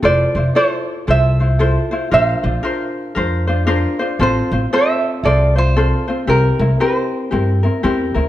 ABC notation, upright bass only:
X:1
M:4/4
L:1/8
Q:"Swing" 1/4=115
K:F
V:1 name="Upright bass" clef=bass
F,,, F,,, z2 C,,4 | B,,, B,,, z2 F,,4 | A,,, A,,, z2 C,,4 | C,, C,, z2 G,,2 E,, D,, |]